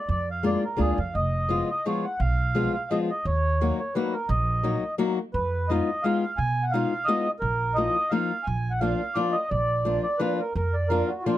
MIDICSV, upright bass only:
0, 0, Header, 1, 2, 480
1, 0, Start_track
1, 0, Tempo, 349040
1, 114, Time_signature, 3, 2, 24, 8
1, 15647, End_track
2, 0, Start_track
2, 0, Title_t, "Upright bass"
2, 0, Program_c, 0, 32
2, 119, Note_on_c, 0, 41, 72
2, 744, Note_off_c, 0, 41, 0
2, 1088, Note_on_c, 0, 38, 55
2, 1324, Note_off_c, 0, 38, 0
2, 1346, Note_on_c, 0, 41, 63
2, 1543, Note_off_c, 0, 41, 0
2, 1580, Note_on_c, 0, 29, 70
2, 2206, Note_off_c, 0, 29, 0
2, 3023, Note_on_c, 0, 35, 77
2, 3646, Note_off_c, 0, 35, 0
2, 4474, Note_on_c, 0, 39, 73
2, 5089, Note_off_c, 0, 39, 0
2, 5899, Note_on_c, 0, 34, 84
2, 6522, Note_off_c, 0, 34, 0
2, 7346, Note_on_c, 0, 41, 74
2, 7968, Note_off_c, 0, 41, 0
2, 8777, Note_on_c, 0, 47, 70
2, 9396, Note_off_c, 0, 47, 0
2, 10202, Note_on_c, 0, 34, 72
2, 10822, Note_off_c, 0, 34, 0
2, 11651, Note_on_c, 0, 34, 69
2, 12270, Note_off_c, 0, 34, 0
2, 13081, Note_on_c, 0, 34, 65
2, 13706, Note_off_c, 0, 34, 0
2, 14515, Note_on_c, 0, 41, 72
2, 15138, Note_off_c, 0, 41, 0
2, 15647, End_track
0, 0, End_of_file